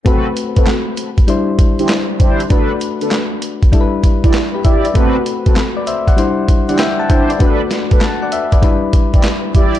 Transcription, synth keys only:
0.05 A3 C4 F#4 B4
1.27 G3 D4 E4 C5
2.50 A3 D4 F#4 B4
3.72 G3 D4 E4 A4
3.81 B4
4.54 G4 B4
4.65 E5
4.85 B4 D5
4.94 A3 C4 F#4 B4
5.77 B4 D5
5.87 C5 E5
6.08 D5 F#5
6.17 G3 D4 E4 C5
6.69 D5 F#5
6.79 E5 G5
6.99 F#5 A5
7.10 E5 G5
7.30 B4 D5
7.39 A3 D4 F#4 B4
8.02 F#5 A5
8.22 D5 F#5
8.32 E5
8.52 B4 D5
8.61 G3 D4 E4 B4

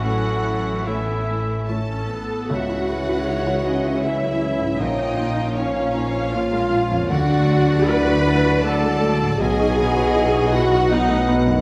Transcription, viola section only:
Already playing: E3 C#4
0.87 B3
1.28 A3
1.69 C#4 A4
2.10 B3
2.49 F#4
4.04 E4
4.79 D#4
5.56 C#4
6.34 F4
7.11 F#4
7.89 B4
8.66 A4
9.41 G#4
10.53 F#4
10.92 D#4

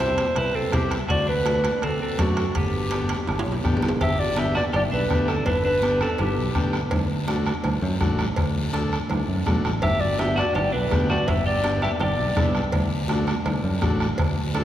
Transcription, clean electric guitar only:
Already playing: E4
0.38 E4
0.55 C4
0.73 C4
1.09 F#4
1.27 D4
1.83 C4
2.02 C4
2.20 A3
2.57 B3
4.01 G4
4.20 F#4
4.38 G4
4.55 F#4
4.73 G4
4.91 D4
5.27 C4
5.46 D4
5.65 D4
6.02 C4
6.20 B3
9.83 G4
10.01 F#4
10.19 G4
10.36 F#4
10.55 G4
10.72 D4
11.10 F#4
11.28 G4
11.46 G4
11.83 G4
12.01 G4

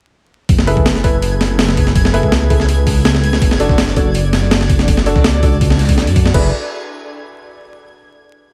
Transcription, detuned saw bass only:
0.49 F#1
1.95 F#1
2.23 C#2
3.42 F#1
4.88 F#1
5.16 C#2
6.07 F#2
6.34 F#1

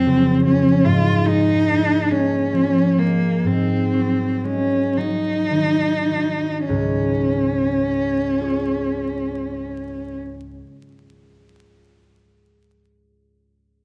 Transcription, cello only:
Already playing: C4
0.45 C#4
0.85 F4
1.26 D#4
2.11 C#4
2.99 A#3
3.47 C4
4.44 C#4
4.97 D#4
6.67 C#4

